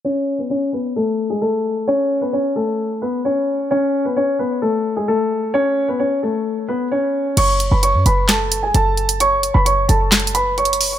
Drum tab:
CC |------------------------------------------------|------------------------------------------------|------------------------------------------------|------------------------------------------------|
HH |------------------------------------------------|------------------------------------------------|------------------------------------------------|------------------------------------------------|
CP |------------------------------------------------|------------------------------------------------|------------------------------------------------|------------------------------------------------|
SD |------------------------------------------------|------------------------------------------------|------------------------------------------------|------------------------------------------------|

CC |x-----------------------------------------------|------------------------------------------------|
HH |x-----x-----x-----x-----x-----x-----x-----x--x--|x-----x-----x-----x-----x-x-x-x-----x-x-x-o-----|
CP |------------------------x-----------------------|------------------------x-----------------------|
SD |------------------------o-----------------------|------------------------o-----------------------|